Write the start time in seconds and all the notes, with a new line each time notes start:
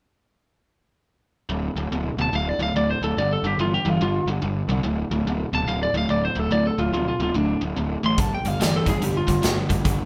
1.50 D1 D2 A2
1.76 D1 D2 A2
1.91 D1 D2 B2
2.17 D1 D2 B2
2.21 A5
2.33 D1 D2 A2 F5
2.49 D5
2.59 D1 D2 A2 F5
2.74 D1 D2 A2 D5
2.90 C5
3.02 D1 D2 A2 A4
3.17 G1 G2 D3 D5
3.33 A4
3.43 G1 G2 D3 G4
3.58 G1 G2 E3 F4
3.74 G4
3.85 G1 G2 E3
3.90 F4
4.01 G1 G2 D3 F4
4.26 G1 G2 D3
4.42 G1 G2 D3
4.68 C2 G2 D3
4.84 D1 D2 A2
5.11 D1 D2 A2
5.25 D1 D2 B2
5.53 D1 D2 B2 A5
5.67 D1 D2 A2 F5
5.83 D5
5.94 D1 D2 A2 F5
6.09 D1 D2 A2 D5
6.25 C5
6.35 D1 D2 A2
6.39 A4
6.51 D1 D2 A2 D5
6.67 A4
6.78 D1 D2 A2 F4
6.93 D1 D2 B2 F4
7.08 F4
7.20 D1 D2 B2 F4
7.35 D1 D2 A2 D4
7.62 D1 D2 A2
7.77 D1 D2 A2
8.03 A1 D2 A2 C6
8.18 G1 G2 D3 A5, kick, closed hi-hat
8.35 G5
8.45 G1 G2 D3 F5, closed hi-hat
8.60 G1 G2 E3 D5, snare, closed hi-hat
8.76 A4
8.86 G1 G2 E3 G#4, kick, closed hi-hat
9.01 G1 G2 D3 G4, closed hi-hat
9.17 F4
9.27 G1 G2 D3, kick, closed hi-hat
9.43 G1 G2 D3, snare, closed hi-hat
9.69 G1 G2 D3, kick, closed hi-hat
9.85 G1 G2 D3, kick, closed hi-hat